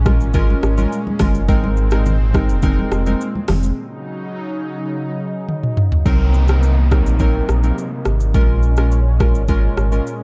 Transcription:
Already playing: sub bass A#1, analog synth pad A#2 G#3 C#4
0.05 synth keys G#3 C#4 F4 A#4, kick, cross-stick, high conga, shaker
0.20 sub bass G#1, shaker
0.34 synth keys G#3 C#4 F4 A#4, kick, low conga, shaker
0.50 high conga
0.63 sub bass G#1, cross-stick, shaker
0.77 synth keys G#3 C#4 F4 A#4, high conga, shaker
0.92 shaker
1.07 high conga
1.19 sub bass F#1, synth keys G#3 C#4 F4 A#4, kick, cross-stick, open hi-hat, high conga, low conga, shaker
1.35 shaker
1.48 sub bass G#1, analog synth pad A#2 C4, synth keys G#3 C4 D#4 A#4, kick, shaker
1.64 high conga
1.77 shaker
1.91 synth keys G#3 C4 D#4 A#4, cross-stick, shaker
2.06 low conga, shaker
2.34 synth keys G#3 C4 D#4 A#4, kick, cross-stick, high conga, shaker
2.49 sub bass F1, shaker
2.62 synth keys G#3 C4 D#4 A#4, kick, low conga, shaker
2.79 high conga
2.91 sub bass F1, cross-stick, shaker
3.06 synth keys G#3 C4 D#4 A#4, high conga, shaker
3.21 shaker
3.35 high conga
3.48 sub bass F1, cross-stick, open hi-hat, high conga, low conga, shaker
3.63 shaker
3.77 analog synth pad C#3 F#3 D#4
5.49 high tom
5.63 mid tom
5.77 mid tom
5.92 floor tom
6.05 sub bass C2, analog synth pad C3 A#3 D#4, synth keys F#3 C4 D#4 A#4, kick, downlifter, shaker
6.34 shaker
6.48 synth keys F#3 C4 D#4 A#4, cross-stick, shaker
6.63 shaker
6.91 synth keys F#3 C4 D#4 A#4, kick, cross-stick, shaker
7.06 sub bass A#1, shaker
7.19 synth keys F#3 C4 D#4 A#4, kick, shaker
7.49 sub bass A#1, cross-stick, shaker
7.63 synth keys F#3 C4 D#4 A#4, shaker
7.78 shaker
8.05 sub bass G#1, cross-stick, shaker
8.20 shaker
8.34 sub bass A#1, analog synth pad A#2 G#3 C#4, synth keys G#3 C#4 F4 A#4, kick, shaker
8.63 shaker
8.77 synth keys G#3 C#4 F4 A#4, cross-stick, shaker
8.91 shaker
9.20 synth keys G#3 C#4 F4 A#4, kick, cross-stick, shaker
9.35 sub bass G#1, shaker
9.48 synth keys G#3 C#4 F4 A#4, kick, shaker
9.77 sub bass G#1, cross-stick, shaker
9.92 synth keys G#3 C#4 F4 A#4, shaker
10.07 shaker

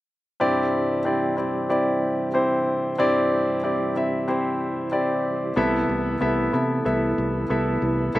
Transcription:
0.40 grand piano G2 C4 E4 G4 D5, tonewheel organ C3 E3 G3 D4 G4
1.05 grand piano C4 E4 G4 D5
1.37 grand piano C4 E4 G4 D5
1.69 grand piano C4 E4 G4 D5
2.34 grand piano C4 E4 G4 C5
2.98 grand piano G2 C4 E4 G4 D5, tonewheel organ E4
3.63 grand piano C4 E4 G4 D5
3.96 grand piano C4 E4 G4 E5
4.28 grand piano C4 E4 G4 C5
4.92 grand piano C4 E4 G4 D5
5.56 fingered electric bass C2, grand piano C3 B3 E4 A4 E5, tonewheel organ E3 A3 B3 A4
5.89 fingered electric bass C2
6.21 fingered electric bass C2, grand piano B3 E4 A4 E5
6.53 fingered electric bass C3, grand piano B3 E4 A4 E5
6.85 fingered electric bass C2, grand piano B3 E4 A4 E5
7.18 fingered electric bass C2
7.50 fingered electric bass C2, grand piano B3 E4 A4 E5
7.82 fingered electric bass C2
8.15 fingered electric bass C2, grand piano C3 A#3 E4 A4 E5, tonewheel organ D4

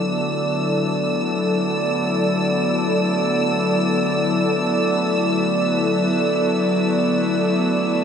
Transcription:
Already playing: synth drone D3 A3, analog synth pad F#3 B3 E4 A4 D5, violin section E6

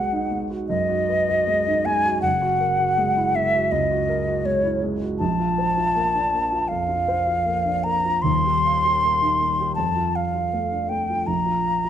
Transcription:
Already playing: grand piano B1 G#3 F#4 B4, flute F#5
0.13 grand piano D#4
0.31 grand piano G#3
0.50 grand piano F#4
0.68 grand piano F#2, flute D#5
0.89 grand piano F#4
1.09 grand piano B4
1.28 grand piano F#4
1.47 grand piano G#3
1.67 grand piano D#4
1.85 grand piano G#3, flute G#5
2.05 grand piano F#4
2.22 grand piano F#1, flute F#5
2.42 grand piano F#4
2.60 grand piano A#4
2.79 grand piano F#4
2.98 grand piano G#3
3.17 grand piano E4
3.35 grand piano G#3, flute E5
3.54 grand piano F#4
3.71 grand piano C#2, flute D#5
3.91 grand piano F#4
4.09 grand piano A#4
4.27 grand piano F#4
4.45 grand piano G#3, flute C#5
4.64 grand piano E4
4.83 grand piano G#3
5.02 grand piano F#4
5.19 grand piano A#1, flute A5
5.39 grand piano F4
5.58 grand piano C5
5.77 grand piano F4
5.96 grand piano A#3
6.15 grand piano D4
6.33 grand piano A#3
6.52 grand piano F4
6.68 grand piano F2, flute F5
6.89 grand piano F4
7.08 grand piano C5
7.27 grand piano F4
7.46 grand piano A#3
7.65 grand piano D4
7.84 grand piano A#3, flute A#5
8.05 grand piano F4
8.22 grand piano D#1 D#2, flute C6
8.45 grand piano G4
8.65 grand piano F5
8.84 grand piano G4
9.03 grand piano A#3
9.22 grand piano D#4
9.41 grand piano A#3
9.60 grand piano G4
9.75 grand piano F2, flute A5
9.96 grand piano F4
10.16 flute F5, grand piano F5
10.34 grand piano F4
10.53 grand piano A3
10.72 grand piano D4
10.89 grand piano A3, flute G5
11.10 grand piano F4
11.27 grand piano A#1, flute A#5
11.46 grand piano F4
11.65 grand piano F5
11.84 grand piano F4

